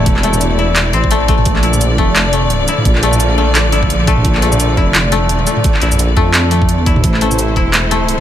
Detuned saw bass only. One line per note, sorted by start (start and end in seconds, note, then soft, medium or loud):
0.00 0.92 E1 loud
0.93 1.45 A1 loud
1.46 1.97 A#1 medium
1.98 2.67 F1 medium
2.85 3.58 A#1 loud
3.58 3.89 A1 loud
3.90 4.24 A#1 loud
4.25 4.76 A#1 loud
4.78 5.26 F1 medium
5.26 5.46 E1 medium
5.82 6.15 A#1 loud
6.17 6.78 F2 medium
6.78 7.03 E2 medium
7.04 7.55 A1 medium
7.56 8.20 E1 medium